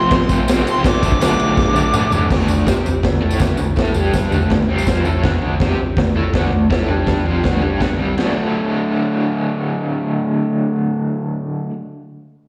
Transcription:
Already playing: overdriven electric guitar F2 C3 F3 A3 C4, lead electric guitar C6
0.11 kick, snare, ride
0.15 lead electric guitar C6
0.29 overdriven electric guitar A3 C4, kick, ride, tambourine
0.33 overdriven electric guitar F3
0.48 overdriven electric guitar C3 F3 A3 C4, snare, ride, tambourine
0.67 overdriven electric guitar F3 A3 C4, ride, tambourine
0.71 lead electric guitar C6
0.84 overdriven electric guitar D3 F#3 A3 D4, lead electric guitar D6, kick, snare, ride, tambourine
1.03 overdriven electric guitar F#3 A3 D4, kick, ride, tambourine
1.12 kick
1.21 overdriven electric guitar D3 F#3 A3 D4, lead electric guitar D6, snare, ride, tambourine
1.40 ride, tambourine
1.57 kick, snare, tambourine
1.75 overdriven electric guitar F#3 A3 D4, tambourine
1.94 overdriven electric guitar D3 F#3 A3 D4, mid tom, tambourine
2.11 overdriven electric guitar A3 D4, floor tom, tambourine
2.16 overdriven electric guitar F#3
2.30 overdriven electric guitar D3 A3 D4, kick, snare, floor tom, crash, tambourine
2.40 tambourine
2.48 floor tom, tambourine
2.59 tambourine
2.66 overdriven electric guitar C4 G4 C5, kick, snare, floor tom, tambourine
2.77 tambourine
2.86 muted overdriven electric guitar stroke, floor tom, tambourine
3.03 overdriven electric guitar D3 A3, kick, snare, floor tom, tambourine
3.22 overdriven electric guitar A3 E4 A4, floor tom
3.31 tambourine
3.40 overdriven electric guitar D3 A3 D4, kick, snare, floor tom, tambourine
3.49 tambourine
3.57 overdriven electric guitar D3 A3, floor tom, tambourine
3.76 overdriven electric guitar A3 E4 A4, kick, snare, floor tom, tambourine
3.85 tambourine
3.94 overdriven electric guitar G3 D4 G4, floor tom, tambourine
4.04 tambourine
4.13 kick, snare, floor tom, tambourine
4.24 tambourine
4.32 overdriven electric guitar D3 A3 D4, floor tom, tambourine
4.42 tambourine
4.50 overdriven electric guitar D3 A3, kick, snare, floor tom, tambourine
4.69 overdriven electric guitar C3 G3 C4, floor tom
4.78 tambourine
4.87 overdriven electric guitar F3 C4 F4, kick, snare, floor tom, tambourine
4.96 tambourine
5.05 overdriven electric guitar A3 E4 A4, floor tom, tambourine
5.24 overdriven electric guitar D3 A3 D4, kick, snare, floor tom
5.42 floor tom
5.60 overdriven electric guitar C4 G4 C5, kick, snare, floor tom
5.79 muted overdriven electric guitar stroke, floor tom
5.97 overdriven electric guitar D3 A3, kick, snare, floor tom
6.15 overdriven electric guitar A3 E4 A4, floor tom
6.33 overdriven electric guitar D3 A3 D4, kick, snare, floor tom
6.52 overdriven electric guitar D3 A3, floor tom
6.70 overdriven electric guitar A3 E4 A4, kick, snare, floor tom
6.89 overdriven electric guitar G3 D4 G4, floor tom
7.07 kick, snare, floor tom
7.26 overdriven electric guitar F3 C4 F4, floor tom
7.44 overdriven electric guitar D3 A3 D4, kick, snare, floor tom
7.62 overdriven electric guitar G3 D4 G4, floor tom
7.80 overdriven electric guitar D3 A3 D4, kick, snare, floor tom
7.99 overdriven electric guitar C3 G3 C4, floor tom
8.17 overdriven electric guitar D3 F#3 A3 D4, snare, crash

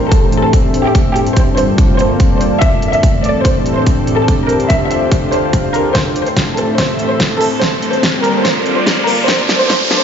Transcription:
Already playing: ambient pad A2 E3 C4 A4, analog synth pad A3 D4 G4 C5
0.04 analog synth pad E5
0.12 violin section A4, kick, closed hi-hat
0.32 closed hi-hat
0.43 violin section A4
0.53 kick, closed hi-hat
0.74 closed hi-hat
0.85 violin section G4
0.95 ambient pad G2 D3 A#3, analog synth pad G3, kick, closed hi-hat
1.12 analog synth pad C4, violin section G4, closed hi-hat
1.17 analog synth pad F4
1.27 closed hi-hat
1.35 analog synth pad A#3, violin section C5, kick, closed hi-hat
1.57 violin section C5, closed hi-hat
1.70 analog synth pad D5
1.78 kick, closed hi-hat
1.99 violin section C5, closed hi-hat
2.20 kick, closed hi-hat
2.41 violin section C5, closed hi-hat
2.62 ambient pad A2 E3 C4, analog synth pad A3, violin section E5, kick, closed hi-hat
2.82 analog synth pad D4, closed hi-hat
2.93 violin section E5, closed hi-hat
3.03 analog synth pad C5, kick, closed hi-hat
3.08 analog synth pad G4
3.24 violin section D5, closed hi-hat
3.37 analog synth pad E5
3.45 violin section C5, kick, closed hi-hat
3.66 closed hi-hat
3.77 violin section C5
3.87 kick, closed hi-hat
4.07 closed hi-hat
4.18 violin section A4
4.28 ambient pad D2 D3 F4, kick, closed hi-hat
4.49 violin section A#4, closed hi-hat
4.60 closed hi-hat
4.70 violin section E5, kick, closed hi-hat
4.91 violin section E5, closed hi-hat
5.04 analog synth pad F5
5.12 kick, closed hi-hat
5.32 violin section C5, closed hi-hat
5.53 kick, closed hi-hat
5.74 violin section A#4, closed hi-hat
5.95 ambient pad A2 E3 C4 A4, analog synth pad A3, violin section C5, kick, snare, closed hi-hat, riser
6.14 analog synth pad E5, closed hi-hat
6.27 violin section C5, closed hi-hat
6.37 kick, snare, closed hi-hat
6.57 violin section A4, closed hi-hat
6.78 violin section C5, kick, snare, closed hi-hat
6.99 closed hi-hat
7.10 violin section C5
7.20 kick, snare, closed hi-hat
7.41 violin section A4, open hi-hat
7.61 ambient pad G2 D3 A#3, analog synth pad G3, violin section C5, kick, snare, closed hi-hat
7.67 analog synth pad C4
7.82 analog synth pad A#3 F4, closed hi-hat
7.88 analog synth pad D5
7.93 violin section C5, closed hi-hat
8.03 kick, snare, closed hi-hat
8.24 violin section A#4, closed hi-hat
8.45 violin section C5, kick, snare, closed hi-hat
8.66 closed hi-hat
8.77 violin section C5
8.87 kick, snare, closed hi-hat
9.07 violin section A#4, open hi-hat
9.28 ambient pad A2 E3 C4 A4, analog synth pad A3, violin section C5, kick, snare, closed hi-hat
9.39 analog synth pad D4
9.49 snare, closed hi-hat
9.60 analog synth pad G4, violin section C5, closed hi-hat
9.70 violin section C5, kick, snare, closed hi-hat
9.78 analog synth pad C5
9.91 snare, closed hi-hat

